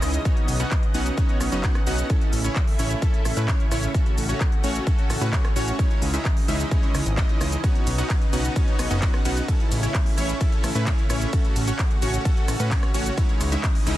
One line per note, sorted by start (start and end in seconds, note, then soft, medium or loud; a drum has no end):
0.00 0.18 C#2 loud
0.00 0.21 C#3 medium
0.00 0.23 E3 medium
0.00 0.22 G#3 medium
0.00 0.22 C#4 medium
0.00 0.22 D#4 medium
0.00 0.22 E4 medium
0.00 0.22 D#5 loud
0.00 2.06 D#5 medium
0.00 cross-stick medium
0.00 open hi-hat loud
0.00 cabasa medium
0.14 closed hi-hat medium
0.14 cabasa soft
0.25 2.08 C#3 medium
0.25 0.57 B3 medium
0.25 2.08 B3 medium
0.25 0.57 C#4 medium
0.25 0.57 D#4 medium
0.25 0.57 F#4 medium
0.25 0.57 C#5 medium
0.25 kick loud
0.25 closed hi-hat medium
0.25 cabasa soft
0.37 closed hi-hat soft
0.48 0.64 B1 loud
0.48 open hi-hat loud
0.48 cabasa medium
0.60 0.76 B3 medium
0.60 0.76 C#4 medium
0.60 0.76 D#4 medium
0.60 0.76 F#4 medium
0.60 0.76 F#5 medium
0.60 closed hi-hat medium
0.60 cabasa soft
0.71 kick loud
0.71 clap loud
0.71 closed hi-hat medium
0.71 cabasa soft
0.83 closed hi-hat soft
0.94 1.10 B1 medium
0.94 1.15 B3 medium
0.94 1.15 C#4 medium
0.94 1.15 D#4 medium
0.94 1.15 F#4 medium
0.94 1.15 F#5 medium
0.94 open hi-hat loud
0.94 cabasa medium
1.06 closed hi-hat medium
1.06 cabasa soft
1.18 1.49 C#4 medium
1.18 1.49 D#4 medium
1.18 1.49 F#4 medium
1.18 1.49 C#5 loud
1.18 kick loud
1.18 closed hi-hat medium
1.18 cabasa soft
1.29 closed hi-hat soft
1.40 1.48 B1 medium
1.40 cross-stick medium
1.40 open hi-hat loud
1.40 cabasa medium
1.52 1.68 F#1 loud
1.52 1.61 B3 medium
1.52 1.61 C#4 medium
1.52 1.61 D#4 medium
1.52 1.61 F#4 medium
1.52 1.61 D#5 loud
1.52 closed hi-hat medium
1.52 cabasa soft
1.63 1.80 B3 loud
1.63 1.80 C#4 medium
1.63 1.80 D#4 medium
1.63 1.80 F#4 medium
1.63 1.80 F#5 loud
1.63 kick loud
1.63 clap loud
1.63 closed hi-hat medium
1.63 cabasa soft
1.75 cross-stick medium
1.75 closed hi-hat soft
1.87 2.02 B1 medium
1.87 2.07 B3 medium
1.87 2.07 C#4 medium
1.87 2.07 D#4 medium
1.87 2.07 F#4 medium
1.87 2.07 F#5 loud
1.87 open hi-hat loud
1.87 cabasa medium
1.98 closed hi-hat medium
1.98 cabasa soft
2.10 7.60 C#3 medium
2.10 3.93 A3 medium
2.10 2.42 C#4 medium
2.10 3.93 E4 medium
2.10 2.42 E4 medium
2.10 2.42 A4 medium
2.10 kick loud
2.10 closed hi-hat medium
2.10 cabasa soft
2.21 closed hi-hat soft
2.33 2.49 A1 loud
2.33 open hi-hat loud
2.33 cabasa medium
2.44 2.61 C#4 medium
2.44 2.61 E4 medium
2.44 2.61 C#5 medium
2.44 closed hi-hat medium
2.44 cabasa soft
2.56 kick loud
2.56 clap loud
2.56 closed hi-hat medium
2.56 cabasa soft
2.67 open hi-hat medium
2.79 2.95 A1 medium
2.79 2.99 C#4 medium
2.79 2.99 E4 medium
2.79 2.99 C#5 medium
2.79 open hi-hat loud
2.79 cabasa medium
2.91 closed hi-hat medium
2.91 cabasa soft
3.02 3.34 C#4 medium
3.02 3.34 E4 medium
3.02 3.34 A4 loud
3.02 kick loud
3.02 closed hi-hat medium
3.02 cabasa soft
3.14 closed hi-hat soft
3.25 3.33 A1 medium
3.25 cross-stick medium
3.25 open hi-hat loud
3.25 cabasa medium
3.37 3.52 A2 loud
3.37 3.46 C#4 medium
3.37 3.46 E4 medium
3.37 3.46 B4 loud
3.37 closed hi-hat medium
3.37 cabasa soft
3.48 3.65 C#4 loud
3.48 kick loud
3.48 clap loud
3.48 closed hi-hat medium
3.48 cabasa soft
3.60 closed hi-hat soft
3.71 3.87 A1 medium
3.71 3.92 C#4 medium
3.71 3.92 E4 medium
3.71 3.92 C#5 loud
3.71 cross-stick medium
3.71 open hi-hat loud
3.71 cabasa medium
3.83 closed hi-hat medium
3.83 cabasa soft
3.94 5.77 A3 medium
3.94 4.26 C#4 medium
3.94 5.77 F#4 medium
3.94 4.26 F#4 medium
3.94 4.26 A4 medium
3.94 kick loud
3.94 closed hi-hat medium
3.94 cabasa soft
4.06 closed hi-hat soft
4.17 4.33 A1 loud
4.17 open hi-hat loud
4.17 cabasa medium
4.29 4.45 C#4 medium
4.29 4.45 F#4 medium
4.29 4.45 C#5 medium
4.29 closed hi-hat medium
4.29 cabasa soft
4.41 kick loud
4.41 clap loud
4.41 closed hi-hat medium
4.41 cabasa soft
4.52 closed hi-hat soft
4.64 4.79 A1 medium
4.64 4.84 C#4 medium
4.64 4.84 F#4 medium
4.64 4.84 C#5 loud
4.64 open hi-hat loud
4.64 cabasa medium
4.75 closed hi-hat medium
4.75 cabasa soft
4.87 5.19 C#4 medium
4.87 5.19 F#4 medium
4.87 5.19 A4 loud
4.87 kick loud
4.87 closed hi-hat soft
4.87 cabasa soft
4.99 closed hi-hat soft
5.10 5.18 A1 medium
5.10 cross-stick medium
5.10 open hi-hat loud
5.10 cabasa medium
5.21 5.37 A2 loud
5.21 5.30 C#4 loud
5.21 5.30 F#4 medium
5.21 5.30 B4 loud
5.21 closed hi-hat medium
5.21 cabasa soft
5.33 5.49 C#4 loud
5.33 5.49 C#5 loud
5.33 kick loud
5.33 clap loud
5.33 closed hi-hat medium
5.33 cabasa soft
5.45 cross-stick medium
5.45 closed hi-hat soft
5.56 5.72 A1 medium
5.56 5.76 C#4 medium
5.56 5.76 F#4 medium
5.56 5.76 C#5 loud
5.56 open hi-hat loud
5.56 cabasa medium
5.68 closed hi-hat medium
5.68 cabasa soft
5.79 7.62 E3 medium
5.79 6.11 G#3 medium
5.79 6.11 C#4 medium
5.79 6.11 D#4 medium
5.79 6.11 E4 medium
5.79 6.11 C#5 medium
5.79 7.62 D#5 medium
5.79 kick loud
5.79 closed hi-hat medium
5.79 cabasa soft
5.91 closed hi-hat soft
6.02 6.18 C#2 loud
6.02 open hi-hat loud
6.02 cabasa medium
6.14 6.30 G#3 medium
6.14 6.30 C#4 medium
6.14 6.30 D#4 medium
6.14 6.30 E4 medium
6.14 6.30 E5 medium
6.14 closed hi-hat medium
6.14 cabasa soft
6.25 kick loud
6.25 clap loud
6.25 closed hi-hat medium
6.25 cabasa soft
6.37 open hi-hat medium
6.48 6.64 C#2 medium
6.48 6.69 G#3 medium
6.48 6.69 C#4 medium
6.48 6.69 D#4 medium
6.48 6.69 E4 medium
6.48 6.69 E5 medium
6.48 open hi-hat loud
6.48 cabasa medium
6.60 closed hi-hat soft
6.60 cabasa soft
6.71 7.03 G#3 medium
6.71 7.03 C#4 medium
6.71 7.03 D#4 medium
6.71 7.03 E4 medium
6.71 7.03 C#5 loud
6.71 kick loud
6.71 closed hi-hat medium
6.71 cabasa soft
6.83 closed hi-hat soft
6.94 7.02 C#2 medium
6.94 cross-stick medium
6.94 open hi-hat loud
6.94 cabasa medium
7.06 7.22 G#1 loud
7.06 closed hi-hat medium
7.06 cabasa soft
7.17 7.61 G#3 medium
7.17 7.61 C#4 medium
7.17 7.61 D#4 medium
7.17 7.61 E4 medium
7.17 7.61 D#5 loud
7.17 kick loud
7.17 clap loud
7.17 closed hi-hat medium
7.17 cabasa soft
7.29 closed hi-hat soft
7.41 7.56 C#2 medium
7.41 cross-stick medium
7.41 open hi-hat loud
7.41 cabasa medium
7.52 closed hi-hat medium
7.52 cabasa soft
7.64 13.14 C#3 medium
7.64 7.96 B3 medium
7.64 9.46 B3 medium
7.64 7.96 C#4 medium
7.64 7.96 D#4 medium
7.64 9.46 D#4 medium
7.64 7.96 F#4 medium
7.64 7.96 C#5 medium
7.64 kick loud
7.64 closed hi-hat medium
7.64 ride medium
7.64 cabasa soft
7.75 closed hi-hat soft
7.87 8.02 B1 loud
7.87 open hi-hat loud
7.87 ride medium
7.87 cabasa medium
7.98 8.15 B3 medium
7.98 8.14 C#4 medium
7.98 8.14 D#4 medium
7.98 8.14 F#4 medium
7.98 8.15 F#5 medium
7.98 closed hi-hat medium
7.98 cabasa soft
8.10 kick loud
8.10 clap loud
8.10 closed hi-hat medium
8.10 ride medium
8.10 cabasa soft
8.22 closed hi-hat soft
8.33 8.49 B1 medium
8.33 8.53 B3 medium
8.33 8.53 C#4 medium
8.33 8.53 D#4 medium
8.33 8.53 F#4 medium
8.33 8.53 F#5 loud
8.33 open hi-hat loud
8.33 ride medium
8.33 cabasa medium
8.45 closed hi-hat soft
8.45 cabasa soft
8.56 8.88 B3 medium
8.56 8.88 C#4 medium
8.56 8.88 D#4 medium
8.56 8.88 F#4 medium
8.56 8.88 C#5 loud
8.56 kick loud
8.56 closed hi-hat medium
8.56 ride medium
8.56 cabasa soft
8.68 closed hi-hat soft
8.79 8.87 B1 medium
8.79 cross-stick medium
8.79 open hi-hat loud
8.79 ride medium
8.79 cabasa medium
8.91 9.06 F#1 loud
8.91 8.99 B3 loud
8.91 8.99 C#4 medium
8.91 8.99 D#4 medium
8.91 8.99 F#4 medium
8.91 8.99 D#5 loud
8.91 closed hi-hat soft
8.91 cabasa soft
9.02 9.18 B3 loud
9.02 9.18 C#4 loud
9.02 9.18 D#4 medium
9.02 9.18 F#4 medium
9.02 9.18 F#5 loud
9.02 kick loud
9.02 clap loud
9.02 closed hi-hat medium
9.02 ride medium
9.02 cabasa soft
9.14 cross-stick medium
9.14 closed hi-hat soft
9.25 9.41 B1 medium
9.25 9.46 B3 medium
9.25 9.46 C#4 medium
9.25 9.46 D#4 medium
9.25 9.46 F#4 medium
9.25 9.46 F#5 loud
9.25 open hi-hat loud
9.25 ride medium
9.25 cabasa medium
9.37 closed hi-hat medium
9.37 cabasa soft
9.48 13.14 A3 medium
9.48 9.80 C#4 medium
9.48 11.31 E4 medium
9.48 9.80 E4 medium
9.48 9.80 A4 medium
9.48 kick loud
9.48 closed hi-hat medium
9.48 ride medium
9.48 cabasa soft
9.60 closed hi-hat soft
9.71 9.87 A1 loud
9.71 open hi-hat loud
9.71 ride medium
9.71 cabasa medium
9.83 9.99 C#4 medium
9.83 9.99 E4 medium
9.83 9.99 C#5 medium
9.83 closed hi-hat medium
9.83 cabasa soft
9.94 kick loud
9.94 clap loud
9.94 closed hi-hat medium
9.94 ride medium
9.94 cabasa soft
10.06 open hi-hat medium
10.18 10.33 A1 medium
10.18 10.38 C#4 medium
10.18 10.38 E4 medium
10.18 10.38 C#5 medium
10.18 open hi-hat loud
10.18 ride medium
10.18 cabasa medium
10.29 closed hi-hat medium
10.29 cabasa soft
10.41 10.73 C#4 medium
10.41 10.73 E4 medium
10.41 10.73 A4 loud
10.41 kick loud
10.41 closed hi-hat medium
10.41 ride medium
10.41 cabasa soft
10.52 closed hi-hat soft
10.64 10.71 A1 medium
10.64 cross-stick medium
10.64 open hi-hat loud
10.64 ride medium
10.64 cabasa medium
10.75 10.91 A2 loud
10.75 10.84 C#4 medium
10.75 10.84 E4 medium
10.75 10.84 B4 loud
10.75 closed hi-hat medium
10.75 cabasa soft
10.87 11.03 E4 medium
10.87 kick loud
10.87 clap loud
10.87 closed hi-hat medium
10.87 ride medium
10.87 cabasa soft
10.98 closed hi-hat soft
11.10 11.26 A1 medium
11.10 11.30 C#4 medium
11.10 11.30 E4 medium
11.10 11.30 C#5 loud
11.10 cross-stick medium
11.10 open hi-hat loud
11.10 ride medium
11.10 cabasa medium
11.21 closed hi-hat medium
11.21 cabasa soft
11.33 13.16 F#4 medium
11.33 11.65 F#4 medium
11.33 11.65 A4 medium
11.33 kick loud
11.33 closed hi-hat medium
11.33 ride medium
11.33 cabasa soft
11.45 closed hi-hat soft
11.56 11.72 A1 loud
11.56 open hi-hat loud
11.56 ride medium
11.56 cabasa medium
11.68 11.84 C#4 medium
11.68 11.84 F#4 medium
11.68 11.84 C#5 medium
11.68 closed hi-hat medium
11.68 cabasa soft
11.79 kick loud
11.79 clap loud
11.79 closed hi-hat medium
11.79 ride medium
11.79 cabasa soft
11.91 closed hi-hat soft
12.02 12.18 A1 medium
12.02 12.23 C#4 medium
12.02 12.23 F#4 medium
12.02 12.23 C#5 loud
12.02 open hi-hat loud
12.02 ride medium
12.02 cabasa medium
12.14 closed hi-hat medium
12.14 cabasa soft
12.25 12.57 C#4 medium
12.25 12.57 F#4 medium
12.25 12.57 A4 loud
12.25 kick loud
12.25 closed hi-hat medium
12.25 ride medium
12.25 cabasa soft
12.37 closed hi-hat soft
12.48 12.56 A1 medium
12.48 cross-stick medium
12.48 open hi-hat loud
12.48 ride medium
12.48 cabasa medium
12.60 12.75 A2 loud
12.60 12.69 C#4 medium
12.60 12.69 F#4 medium
12.60 12.69 B4 loud
12.60 closed hi-hat medium
12.60 cabasa soft
12.71 12.88 C#4 loud
12.71 12.88 F#4 medium
12.71 kick loud
12.71 clap loud
12.71 closed hi-hat medium
12.71 ride medium
12.71 cabasa soft
12.83 cross-stick medium
12.83 closed hi-hat soft
12.94 13.10 A1 medium
12.94 13.15 C#4 medium
12.94 13.15 F#4 medium
12.94 13.15 C#5 loud
12.94 open hi-hat loud
12.94 ride medium
12.94 cabasa medium
13.06 closed hi-hat medium
13.06 cabasa soft
13.17 13.97 C#3 medium
13.17 13.97 E3 medium
13.17 13.49 G#3 medium
13.17 13.49 C#4 medium
13.17 13.49 D#4 medium
13.17 13.49 E4 medium
13.17 13.49 C#5 medium
13.17 13.97 D#5 medium
13.17 kick loud
13.17 closed hi-hat medium
13.17 ride medium
13.17 cabasa soft
13.29 closed hi-hat soft
13.41 13.56 C#2 loud
13.41 cross-stick medium
13.41 open hi-hat loud
13.41 ride medium
13.41 cabasa medium
13.52 13.68 G#3 medium
13.52 13.68 C#4 medium
13.52 13.68 D#4 medium
13.52 13.68 E4 medium
13.52 13.68 E5 medium
13.52 closed hi-hat medium
13.52 cabasa soft
13.64 kick loud
13.64 clap loud
13.64 closed hi-hat medium
13.64 ride medium
13.64 cabasa soft
13.75 open hi-hat medium
13.87 13.97 C#2 medium
13.87 13.97 G#3 medium
13.87 13.97 C#4 medium
13.87 13.97 D#4 medium
13.87 13.97 E4 medium
13.87 13.97 E5 medium
13.87 open hi-hat loud
13.87 ride medium
13.87 cabasa medium